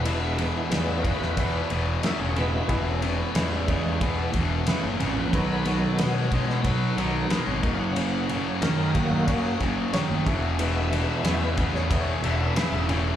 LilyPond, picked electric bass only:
\new Staff \with { instrumentName = "Picked electric bass" } { \clef bass \time 4/4 \key e \lydian \tempo 4 = 91 e,,4 e,8. e,8. e,,8 r16 e,,8. | e,,4 e,8. e,8. e,,8 r16 fis,,16 gis,,16 ais,,16 | b,,4 b,8. b,8. b,,8 r16 gis,,16 fis,,8~ | fis,,4 fis,8. fis,8. fis,,8 r16 fis,,16 e,,8~ |
e,,4 e,8. e,8. e,,8 r16 e,,8. | }